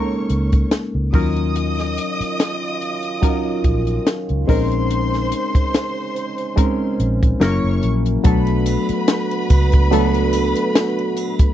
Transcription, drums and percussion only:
0.30 closed hi-hat
0.52 kick, closed hi-hat
0.71 snare, closed hi-hat
1.14 kick, open hi-hat
1.37 closed hi-hat
1.56 closed hi-hat
1.79 snare, closed hi-hat
1.98 closed hi-hat
2.21 closed hi-hat
2.40 snare, closed hi-hat
2.82 closed hi-hat
3.03 closed hi-hat
3.23 kick, closed hi-hat
3.64 kick, closed hi-hat
3.87 closed hi-hat
4.07 snare, closed hi-hat
4.29 closed hi-hat
4.49 kick, open hi-hat
4.72 closed hi-hat
4.90 closed hi-hat
5.14 snare, closed hi-hat
5.32 closed hi-hat
5.55 kick, closed hi-hat
5.74 snare, closed hi-hat
6.16 closed hi-hat
6.38 closed hi-hat
6.58 kick, closed hi-hat
7.00 closed hi-hat
7.23 kick, closed hi-hat
7.41 snare, closed hi-hat
7.83 closed hi-hat
8.06 closed hi-hat
8.24 kick, closed hi-hat, muted triangle
8.47 closed hi-hat, muted triangle
8.66 closed hi-hat, triangle
8.89 closed hi-hat, muted triangle
9.08 snare, closed hi-hat, muted triangle
9.31 closed hi-hat, muted triangle
9.50 kick, closed hi-hat, triangle
9.72 kick, closed hi-hat, muted triangle
9.92 closed hi-hat, muted triangle
10.14 closed hi-hat, muted triangle
10.33 closed hi-hat, triangle
10.56 closed hi-hat, muted triangle
10.75 snare, closed hi-hat, muted triangle
10.99 muted triangle
11.17 closed hi-hat, triangle
11.39 kick, closed hi-hat, muted triangle

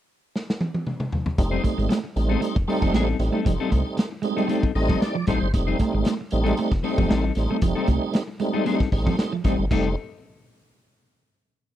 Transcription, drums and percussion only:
0.36 snare
0.50 snare
0.61 high tom
0.74 high tom
0.87 mid tom
1.00 mid tom
1.12 floor tom
1.26 floor tom
1.38 kick, closed hi-hat
1.64 kick, closed hi-hat
1.79 closed hi-hat
1.90 snare, closed hi-hat
2.17 closed hi-hat
2.42 closed hi-hat
2.56 kick
2.69 open hi-hat
2.82 kick
2.94 snare, closed hi-hat
3.19 snare, closed hi-hat
3.46 kick, closed hi-hat
3.72 kick, closed hi-hat
3.97 snare, closed hi-hat
4.23 closed hi-hat
4.38 closed hi-hat
4.49 closed hi-hat
4.63 kick
4.76 open hi-hat
4.89 kick
5.02 snare, closed hi-hat
5.27 kick, snare, closed hi-hat
5.54 kick, closed hi-hat
5.79 kick, closed hi-hat
6.05 snare, closed hi-hat
6.31 closed hi-hat
6.46 closed hi-hat
6.57 closed hi-hat
6.72 kick, snare
6.84 open hi-hat
6.98 kick
7.10 snare, closed hi-hat
7.35 snare, closed hi-hat
7.62 kick, closed hi-hat
7.87 kick, closed hi-hat
8.13 snare, closed hi-hat
8.40 closed hi-hat
8.66 closed hi-hat
8.80 kick, snare
8.92 kick, open hi-hat
9.07 kick
9.19 snare, closed hi-hat
9.44 kick, snare, closed hi-hat
9.71 kick, crash

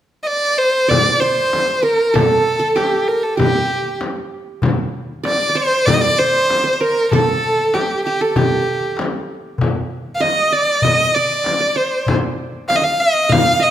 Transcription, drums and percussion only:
0.91 darbuka dum, frame drum
1.53 darbuka tek, frame drum
2.15 darbuka dum, frame drum
2.31 darbuka ka
2.76 darbuka tek, frame drum
2.93 darbuka ka
3.08 darbuka ka
3.39 darbuka dum, frame drum
4.01 darbuka tek, frame drum
4.62 darbuka dum, frame drum
4.78 darbuka ka
5.25 darbuka tek, frame drum
5.40 darbuka ka
5.57 darbuka ka
5.87 darbuka dum, frame drum
6.49 darbuka tek, frame drum
7.12 darbuka dum, frame drum
7.28 darbuka ka
7.74 darbuka tek, frame drum
7.89 darbuka ka
8.05 darbuka ka
8.36 darbuka dum, frame drum
8.82 darbuka ka
8.97 darbuka tek, frame drum
9.58 darbuka dum, frame drum
9.75 darbuka ka
9.90 darbuka ka
10.21 darbuka tek, frame drum
10.36 darbuka ka
10.51 darbuka ka
10.82 darbuka dum, frame drum
11.44 darbuka tek, frame drum
12.06 darbuka dum, frame drum
12.22 darbuka ka
12.68 darbuka tek, frame drum
12.85 darbuka ka
12.99 darbuka ka
13.30 darbuka dum, frame drum

